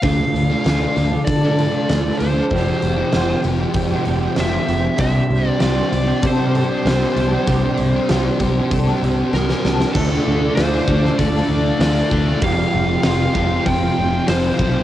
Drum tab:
CC |----------------|----------------|----------------|----------------|
HH |o-o-o-o-o-o-o-o-|o-o-o-o-o-o-o-o-|o-o-o-o-o-o-o-o-|o-o-o-o-o-o-----|
SD |----o-------o---|----o-------o---|----o-------o---|----o-------oooo|
BD |o-------o-------|o-------o-------|o-------o-------|o-----o-o-------|

CC |x---------------|----------------|
HH |----o---o---o---|o---o---o---o---|
SD |----o--o----o---|----o-------o---|
BD |o-----o-o-----o-|o-----o-o-----o-|